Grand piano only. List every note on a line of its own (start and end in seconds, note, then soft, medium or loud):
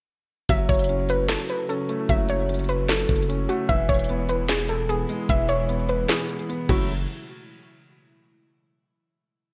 0.49 1.49 F#3 loud
0.89 1.68 C#4 medium
1.69 2.48 C#4 medium
1.89 2.89 A3 medium
2.09 3.09 F#3 medium
2.49 3.28 C#4 medium
3.29 3.69 C#4 medium
3.49 3.69 A3 medium
3.69 4.69 E3 loud
4.10 4.87 B3 medium
4.89 5.68 B3 medium
5.09 6.09 G#3 medium
5.29 6.29 E3 medium
5.69 6.48 B3 medium
6.49 6.69 B3 medium
6.69 6.88 F#3 medium
6.69 6.88 A3 medium
6.69 6.88 C#4 medium
6.69 6.88 E4 loud